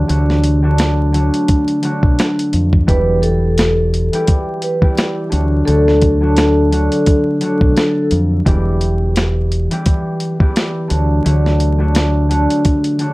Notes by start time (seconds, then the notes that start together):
0.08 D2 D3 F#3 A3 D4 F#4, closed hi-hat
0.30 snare
0.44 closed hi-hat
0.62 D3 F#3 A3 D4 F#4
0.78 snare, closed hi-hat
1.12 D3 F#3 A3 D4 F#4, closed hi-hat
1.34 closed hi-hat
1.48 kick, closed hi-hat
1.68 closed hi-hat
1.82 D3 F#3 A3 D4 F#4, closed hi-hat
2.03 B1, kick
2.19 snare, closed hi-hat
2.39 closed hi-hat
2.53 F2, closed hi-hat
2.73 kick
2.87 E1 E3 G3 B3 E4 G4 B4, kick, closed hi-hat
3.22 A4, closed hi-hat
3.58 snare, closed hi-hat
3.94 closed hi-hat
4.12 E3 G3 B3 E4 G4, closed hi-hat
4.27 kick, closed hi-hat
4.62 B4, closed hi-hat
4.81 E3 G3 B3 E4 G4, kick
4.97 snare, closed hi-hat
5.29 D2 D3 F#3 A3 D4 F#4, closed hi-hat
5.65 D2 D3 F#3 A3 D4 F#4 A4, closed hi-hat
5.88 snare
6.02 kick, closed hi-hat
6.21 D3 F#3 A3 D4 F#4
6.37 snare, closed hi-hat
6.71 D3 F#3 A3 D4 F#4, closed hi-hat
6.92 closed hi-hat
7.06 kick, closed hi-hat
7.41 D3 F#3 A3 D4 F#4, closed hi-hat
7.61 B1, kick
7.77 A4, snare, closed hi-hat
8.11 F2, closed hi-hat
8.45 E1 E3 G3 B3 E4 G4, kick, closed hi-hat
8.81 closed hi-hat
9.16 snare, closed hi-hat
9.52 closed hi-hat
9.71 E3 G3 B3 E4 G4, closed hi-hat
9.86 kick, closed hi-hat
10.20 closed hi-hat
10.40 E3 G3 B3 E4 G4, kick
10.56 snare, closed hi-hat
10.88 D2 D3 F#3 A3 D4 F#4, closed hi-hat
11.24 D2 D3 F#3 A3 D4 F#4, closed hi-hat
11.46 snare
11.60 closed hi-hat
11.78 D3 F#3 A3 D4 F#4
11.95 snare, closed hi-hat
12.29 D3 F#3 A3 D4 F#4, closed hi-hat
12.50 closed hi-hat
12.65 kick, closed hi-hat
12.84 closed hi-hat
12.99 D3 F#3 A3 D4 F#4, closed hi-hat